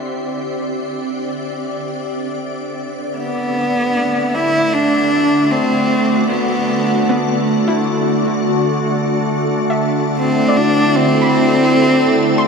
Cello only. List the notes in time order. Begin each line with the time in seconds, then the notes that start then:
3.17 B3
4.35 E4
4.73 D4
5.51 C4
6.29 B3
10.19 C4
10.57 D4
10.96 C4